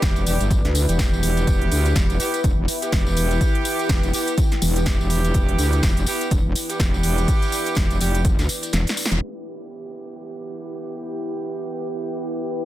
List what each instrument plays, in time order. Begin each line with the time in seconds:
Already playing: horn section B3 E4 G4, ambient pad E4 B4 D5
0.02 wobble bass E1, kick, snare, closed hi-hat, tambourine
0.16 closed hi-hat, tambourine
0.26 wobble bass E1, horn section B3 E4 G4, open hi-hat, tambourine
0.40 wobble bass G1, closed hi-hat, tambourine
0.51 kick, closed hi-hat, tambourine
0.65 wobble bass D2, snare, closed hi-hat
0.75 open hi-hat, tambourine
0.89 wobble bass E1, horn section B3 E4 G4, closed hi-hat, tambourine
0.99 kick, snare, closed hi-hat, tambourine
1.13 tambourine
1.23 wobble bass E1, open hi-hat, tambourine
1.37 closed hi-hat, tambourine
1.47 wobble bass E1, ambient pad G5, kick, closed hi-hat, tambourine
1.61 closed hi-hat
1.72 wobble bass D2, open hi-hat, tambourine
1.86 closed hi-hat, tambourine
1.96 wobble bass E1, kick, snare, closed hi-hat, tambourine
2.10 closed hi-hat, tambourine
2.20 horn section B3 E4 G4, open hi-hat, tambourine
2.34 closed hi-hat, tambourine
2.44 wobble bass E1, kick, closed hi-hat, tambourine
2.58 wobble bass E1
2.68 open hi-hat, tambourine
2.82 horn section B3 E4 G4, closed hi-hat, tambourine
2.92 wobble bass E1, kick, snare, closed hi-hat, tambourine
3.07 tambourine
3.17 open hi-hat, tambourine
3.31 closed hi-hat, tambourine
3.41 kick, closed hi-hat, tambourine
3.55 closed hi-hat
3.65 open hi-hat, tambourine
3.79 closed hi-hat, tambourine
3.89 wobble bass E1, kick, snare, closed hi-hat, tambourine
4.03 closed hi-hat, tambourine
4.13 horn section B3 E4 G4, open hi-hat, tambourine
4.27 closed hi-hat, tambourine
4.38 kick, closed hi-hat, tambourine
4.52 snare, closed hi-hat
4.62 wobble bass E1, open hi-hat, tambourine
4.76 horn section B3 E4 G4, closed hi-hat, tambourine
4.86 kick, snare, closed hi-hat, tambourine
5.00 wobble bass E1, tambourine
5.10 open hi-hat, tambourine
5.24 closed hi-hat, tambourine
5.34 wobble bass E1, ambient pad D5, kick, closed hi-hat, tambourine
5.49 closed hi-hat
5.58 wobble bass D2, open hi-hat, tambourine
5.73 closed hi-hat, tambourine
5.83 wobble bass E1, kick, snare, closed hi-hat, tambourine
5.97 closed hi-hat, tambourine
6.06 horn section B3 E4 G4, open hi-hat, tambourine
6.21 closed hi-hat, tambourine
6.31 wobble bass E1, kick, closed hi-hat, tambourine
6.45 wobble bass E1
6.55 open hi-hat, tambourine
6.70 horn section B3 E4 G4, closed hi-hat, tambourine
6.80 wobble bass E1, kick, snare, closed hi-hat, tambourine
6.94 tambourine
7.03 open hi-hat, tambourine
7.18 closed hi-hat, tambourine
7.28 kick, closed hi-hat, tambourine
7.42 closed hi-hat, tambourine
7.52 open hi-hat, tambourine
7.66 closed hi-hat, tambourine
7.75 wobble bass E1, kick, snare, closed hi-hat, tambourine
7.91 closed hi-hat, tambourine
8.01 wobble bass F1, horn section B3 E4 G4, open hi-hat, tambourine
8.15 closed hi-hat, tambourine
8.24 kick, closed hi-hat, tambourine
8.39 wobble bass D2, snare, closed hi-hat, tambourine
8.49 open hi-hat, tambourine
8.63 closed hi-hat, tambourine
8.73 wobble bass E1, snare, closed hi-hat, tambourine
8.87 snare, closed hi-hat, tambourine
8.97 open hi-hat, tambourine
9.06 snare
9.11 wobble bass E1, closed hi-hat, tambourine
9.22 horn section B3 E4 G4, ambient pad E4 B4 G5, downlifter
9.46 tambourine
9.71 tambourine
9.84 tambourine
9.94 tambourine
10.18 tambourine
10.43 tambourine
10.67 tambourine
10.81 tambourine
10.91 tambourine
11.04 tambourine
11.15 tambourine
11.39 tambourine
11.53 tambourine
11.64 tambourine
11.78 tambourine
11.87 tambourine
12.01 tambourine
12.11 tambourine
12.36 tambourine
12.50 tambourine
12.60 tambourine